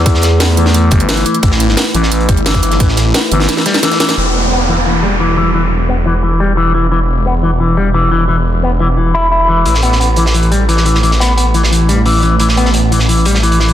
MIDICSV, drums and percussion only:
0, 0, Header, 1, 2, 480
1, 0, Start_track
1, 0, Key_signature, 1, "minor"
1, 0, Tempo, 342857
1, 83, Time_signature, 4, 2, 24, 8
1, 19222, End_track
2, 0, Start_track
2, 0, Title_t, "Drums"
2, 81, Note_on_c, 9, 42, 85
2, 83, Note_off_c, 9, 42, 0
2, 83, Note_on_c, 9, 36, 115
2, 83, Note_on_c, 9, 42, 88
2, 199, Note_on_c, 9, 38, 44
2, 223, Note_off_c, 9, 36, 0
2, 223, Note_off_c, 9, 42, 0
2, 301, Note_on_c, 9, 42, 68
2, 320, Note_off_c, 9, 38, 0
2, 320, Note_on_c, 9, 38, 63
2, 323, Note_off_c, 9, 42, 0
2, 323, Note_on_c, 9, 42, 62
2, 460, Note_off_c, 9, 38, 0
2, 463, Note_off_c, 9, 42, 0
2, 559, Note_on_c, 9, 42, 88
2, 564, Note_off_c, 9, 42, 0
2, 564, Note_on_c, 9, 38, 111
2, 564, Note_on_c, 9, 42, 87
2, 572, Note_off_c, 9, 38, 0
2, 572, Note_on_c, 9, 38, 110
2, 704, Note_off_c, 9, 42, 0
2, 712, Note_off_c, 9, 38, 0
2, 802, Note_on_c, 9, 42, 65
2, 811, Note_off_c, 9, 42, 0
2, 811, Note_on_c, 9, 42, 61
2, 923, Note_on_c, 9, 38, 36
2, 928, Note_off_c, 9, 38, 0
2, 928, Note_on_c, 9, 38, 53
2, 951, Note_off_c, 9, 42, 0
2, 1042, Note_on_c, 9, 42, 97
2, 1043, Note_off_c, 9, 42, 0
2, 1043, Note_on_c, 9, 42, 90
2, 1068, Note_off_c, 9, 38, 0
2, 1183, Note_off_c, 9, 42, 0
2, 1271, Note_on_c, 9, 42, 75
2, 1283, Note_off_c, 9, 42, 0
2, 1283, Note_on_c, 9, 36, 102
2, 1283, Note_on_c, 9, 42, 68
2, 1402, Note_off_c, 9, 42, 0
2, 1402, Note_on_c, 9, 42, 37
2, 1423, Note_off_c, 9, 36, 0
2, 1522, Note_off_c, 9, 42, 0
2, 1522, Note_on_c, 9, 38, 112
2, 1522, Note_on_c, 9, 42, 91
2, 1522, Note_on_c, 9, 46, 84
2, 1531, Note_off_c, 9, 38, 0
2, 1531, Note_on_c, 9, 38, 126
2, 1642, Note_off_c, 9, 42, 0
2, 1642, Note_on_c, 9, 42, 37
2, 1662, Note_off_c, 9, 46, 0
2, 1671, Note_off_c, 9, 38, 0
2, 1762, Note_off_c, 9, 42, 0
2, 1762, Note_on_c, 9, 42, 67
2, 1767, Note_off_c, 9, 42, 0
2, 1767, Note_on_c, 9, 42, 60
2, 1883, Note_off_c, 9, 42, 0
2, 1883, Note_on_c, 9, 42, 36
2, 1998, Note_off_c, 9, 42, 0
2, 1998, Note_on_c, 9, 42, 97
2, 2002, Note_off_c, 9, 42, 0
2, 2002, Note_on_c, 9, 36, 109
2, 2002, Note_on_c, 9, 42, 86
2, 2120, Note_on_c, 9, 38, 59
2, 2142, Note_off_c, 9, 36, 0
2, 2142, Note_off_c, 9, 42, 0
2, 2242, Note_on_c, 9, 42, 65
2, 2246, Note_off_c, 9, 42, 0
2, 2246, Note_on_c, 9, 42, 73
2, 2260, Note_off_c, 9, 38, 0
2, 2360, Note_on_c, 9, 38, 36
2, 2386, Note_off_c, 9, 42, 0
2, 2478, Note_off_c, 9, 38, 0
2, 2478, Note_on_c, 9, 38, 127
2, 2482, Note_on_c, 9, 42, 89
2, 2483, Note_off_c, 9, 38, 0
2, 2483, Note_off_c, 9, 42, 0
2, 2483, Note_on_c, 9, 38, 118
2, 2483, Note_on_c, 9, 42, 92
2, 2623, Note_off_c, 9, 38, 0
2, 2623, Note_off_c, 9, 42, 0
2, 2723, Note_on_c, 9, 42, 68
2, 2839, Note_on_c, 9, 38, 50
2, 2863, Note_off_c, 9, 42, 0
2, 2962, Note_on_c, 9, 42, 93
2, 2970, Note_off_c, 9, 42, 0
2, 2970, Note_on_c, 9, 42, 92
2, 2979, Note_off_c, 9, 38, 0
2, 3085, Note_off_c, 9, 42, 0
2, 3085, Note_on_c, 9, 42, 45
2, 3202, Note_off_c, 9, 42, 0
2, 3202, Note_on_c, 9, 36, 100
2, 3202, Note_on_c, 9, 42, 71
2, 3203, Note_off_c, 9, 42, 0
2, 3203, Note_on_c, 9, 42, 67
2, 3322, Note_off_c, 9, 42, 0
2, 3322, Note_on_c, 9, 42, 36
2, 3342, Note_off_c, 9, 36, 0
2, 3442, Note_off_c, 9, 42, 0
2, 3442, Note_on_c, 9, 38, 113
2, 3442, Note_on_c, 9, 42, 93
2, 3446, Note_off_c, 9, 38, 0
2, 3446, Note_off_c, 9, 42, 0
2, 3446, Note_on_c, 9, 38, 112
2, 3446, Note_on_c, 9, 42, 100
2, 3562, Note_off_c, 9, 42, 0
2, 3562, Note_on_c, 9, 36, 61
2, 3562, Note_on_c, 9, 42, 37
2, 3567, Note_off_c, 9, 38, 0
2, 3567, Note_on_c, 9, 38, 41
2, 3673, Note_off_c, 9, 42, 0
2, 3673, Note_on_c, 9, 42, 62
2, 3681, Note_off_c, 9, 42, 0
2, 3681, Note_on_c, 9, 42, 67
2, 3702, Note_off_c, 9, 36, 0
2, 3707, Note_off_c, 9, 38, 0
2, 3797, Note_on_c, 9, 38, 36
2, 3802, Note_off_c, 9, 42, 0
2, 3802, Note_on_c, 9, 42, 36
2, 3921, Note_off_c, 9, 42, 0
2, 3921, Note_on_c, 9, 42, 92
2, 3923, Note_on_c, 9, 36, 113
2, 3929, Note_off_c, 9, 42, 0
2, 3929, Note_on_c, 9, 42, 88
2, 3937, Note_off_c, 9, 38, 0
2, 4034, Note_on_c, 9, 38, 42
2, 4063, Note_off_c, 9, 36, 0
2, 4069, Note_off_c, 9, 42, 0
2, 4152, Note_off_c, 9, 38, 0
2, 4152, Note_on_c, 9, 38, 59
2, 4162, Note_on_c, 9, 42, 69
2, 4167, Note_off_c, 9, 42, 0
2, 4167, Note_on_c, 9, 42, 66
2, 4292, Note_off_c, 9, 38, 0
2, 4307, Note_off_c, 9, 42, 0
2, 4401, Note_on_c, 9, 38, 118
2, 4402, Note_off_c, 9, 38, 0
2, 4402, Note_on_c, 9, 38, 114
2, 4402, Note_on_c, 9, 42, 92
2, 4403, Note_off_c, 9, 42, 0
2, 4403, Note_on_c, 9, 42, 86
2, 4542, Note_off_c, 9, 38, 0
2, 4543, Note_off_c, 9, 42, 0
2, 4642, Note_on_c, 9, 42, 67
2, 4648, Note_off_c, 9, 42, 0
2, 4648, Note_on_c, 9, 42, 63
2, 4762, Note_on_c, 9, 38, 36
2, 4765, Note_off_c, 9, 38, 0
2, 4765, Note_on_c, 9, 38, 58
2, 4788, Note_off_c, 9, 42, 0
2, 4882, Note_off_c, 9, 38, 0
2, 4882, Note_on_c, 9, 38, 63
2, 4882, Note_on_c, 9, 42, 96
2, 4890, Note_off_c, 9, 42, 0
2, 4890, Note_on_c, 9, 42, 98
2, 5002, Note_off_c, 9, 38, 0
2, 5002, Note_on_c, 9, 38, 57
2, 5030, Note_off_c, 9, 42, 0
2, 5114, Note_on_c, 9, 46, 78
2, 5121, Note_on_c, 9, 42, 70
2, 5123, Note_off_c, 9, 38, 0
2, 5123, Note_on_c, 9, 38, 102
2, 5241, Note_off_c, 9, 38, 0
2, 5241, Note_off_c, 9, 42, 0
2, 5241, Note_on_c, 9, 38, 71
2, 5241, Note_on_c, 9, 42, 39
2, 5254, Note_off_c, 9, 46, 0
2, 5361, Note_off_c, 9, 38, 0
2, 5361, Note_off_c, 9, 42, 0
2, 5361, Note_on_c, 9, 38, 86
2, 5361, Note_on_c, 9, 42, 92
2, 5366, Note_off_c, 9, 42, 0
2, 5366, Note_on_c, 9, 42, 61
2, 5481, Note_off_c, 9, 38, 0
2, 5481, Note_on_c, 9, 38, 113
2, 5482, Note_off_c, 9, 42, 0
2, 5482, Note_on_c, 9, 42, 38
2, 5487, Note_on_c, 9, 46, 76
2, 5603, Note_off_c, 9, 38, 0
2, 5603, Note_off_c, 9, 42, 0
2, 5603, Note_on_c, 9, 38, 100
2, 5603, Note_on_c, 9, 42, 69
2, 5627, Note_off_c, 9, 46, 0
2, 5723, Note_off_c, 9, 38, 0
2, 5723, Note_off_c, 9, 42, 0
2, 5723, Note_on_c, 9, 38, 91
2, 5723, Note_on_c, 9, 42, 38
2, 5732, Note_off_c, 9, 42, 0
2, 5732, Note_on_c, 9, 42, 62
2, 5863, Note_off_c, 9, 38, 0
2, 5872, Note_off_c, 9, 42, 0
2, 13517, Note_on_c, 9, 42, 82
2, 13642, Note_on_c, 9, 38, 49
2, 13657, Note_off_c, 9, 42, 0
2, 13754, Note_on_c, 9, 42, 73
2, 13782, Note_off_c, 9, 38, 0
2, 13890, Note_on_c, 9, 38, 38
2, 13894, Note_off_c, 9, 42, 0
2, 14011, Note_on_c, 9, 42, 80
2, 14030, Note_off_c, 9, 38, 0
2, 14151, Note_off_c, 9, 42, 0
2, 14229, Note_on_c, 9, 42, 65
2, 14364, Note_on_c, 9, 38, 51
2, 14369, Note_off_c, 9, 42, 0
2, 14480, Note_on_c, 9, 42, 79
2, 14504, Note_off_c, 9, 38, 0
2, 14596, Note_off_c, 9, 42, 0
2, 14596, Note_on_c, 9, 42, 42
2, 14722, Note_off_c, 9, 42, 0
2, 14722, Note_on_c, 9, 42, 61
2, 14862, Note_off_c, 9, 42, 0
2, 14963, Note_on_c, 9, 42, 77
2, 15079, Note_on_c, 9, 38, 39
2, 15103, Note_off_c, 9, 42, 0
2, 15198, Note_on_c, 9, 42, 68
2, 15219, Note_off_c, 9, 38, 0
2, 15327, Note_on_c, 9, 38, 37
2, 15338, Note_off_c, 9, 42, 0
2, 15445, Note_on_c, 9, 42, 74
2, 15467, Note_off_c, 9, 38, 0
2, 15558, Note_on_c, 9, 38, 39
2, 15585, Note_off_c, 9, 42, 0
2, 15687, Note_off_c, 9, 38, 0
2, 15687, Note_on_c, 9, 38, 59
2, 15696, Note_on_c, 9, 42, 65
2, 15827, Note_off_c, 9, 38, 0
2, 15836, Note_off_c, 9, 42, 0
2, 15927, Note_on_c, 9, 42, 91
2, 16067, Note_off_c, 9, 42, 0
2, 16159, Note_on_c, 9, 42, 63
2, 16288, Note_on_c, 9, 38, 52
2, 16299, Note_off_c, 9, 42, 0
2, 16415, Note_on_c, 9, 42, 92
2, 16428, Note_off_c, 9, 38, 0
2, 16555, Note_off_c, 9, 42, 0
2, 16645, Note_on_c, 9, 42, 69
2, 16785, Note_off_c, 9, 42, 0
2, 16877, Note_on_c, 9, 46, 85
2, 17017, Note_off_c, 9, 46, 0
2, 17117, Note_on_c, 9, 42, 57
2, 17257, Note_off_c, 9, 42, 0
2, 17353, Note_on_c, 9, 42, 88
2, 17481, Note_on_c, 9, 38, 49
2, 17493, Note_off_c, 9, 42, 0
2, 17601, Note_on_c, 9, 42, 71
2, 17621, Note_off_c, 9, 38, 0
2, 17716, Note_on_c, 9, 38, 33
2, 17741, Note_off_c, 9, 42, 0
2, 17831, Note_on_c, 9, 42, 79
2, 17856, Note_off_c, 9, 38, 0
2, 17971, Note_off_c, 9, 42, 0
2, 18087, Note_on_c, 9, 42, 66
2, 18189, Note_on_c, 9, 38, 47
2, 18227, Note_off_c, 9, 42, 0
2, 18326, Note_on_c, 9, 42, 84
2, 18329, Note_off_c, 9, 38, 0
2, 18439, Note_off_c, 9, 42, 0
2, 18439, Note_on_c, 9, 42, 39
2, 18556, Note_off_c, 9, 42, 0
2, 18556, Note_on_c, 9, 42, 86
2, 18684, Note_on_c, 9, 38, 45
2, 18696, Note_off_c, 9, 42, 0
2, 18805, Note_on_c, 9, 42, 61
2, 18824, Note_off_c, 9, 38, 0
2, 18925, Note_off_c, 9, 42, 0
2, 18925, Note_on_c, 9, 42, 73
2, 19037, Note_on_c, 9, 38, 45
2, 19065, Note_off_c, 9, 42, 0
2, 19158, Note_on_c, 9, 42, 52
2, 19177, Note_off_c, 9, 38, 0
2, 19222, Note_off_c, 9, 42, 0
2, 19222, End_track
0, 0, End_of_file